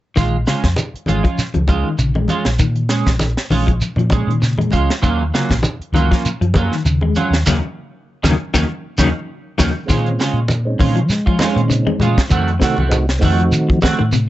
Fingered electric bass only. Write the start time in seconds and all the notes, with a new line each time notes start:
0.17 A#1
0.63 F2
0.94 muted fingered electric bass stroke
1.08 G#1
1.39 muted fingered electric bass stroke
1.55 C#2
1.98 A#1
2.46 A#1
2.59 A#2
3.07 A#1
3.50 A#1
3.96 A#2
4.27 A#2
4.74 C#2
5.04 D#2
5.50 A#1
5.79 muted fingered electric bass stroke
5.92 C#2
6.24 muted fingered electric bass stroke
6.41 F#2
6.85 D#2
7.30 D#2
7.47 D#2
8.24 D#2
8.54 D#2
8.99 D#2
9.59 D#2
9.90 A#2
10.33 A#2
10.80 A#2
11.09 G#3
11.56 A#2
12.00 A#2
12.31 F2
12.78 C2
13.23 F2
13.52 D#3
14.00 A2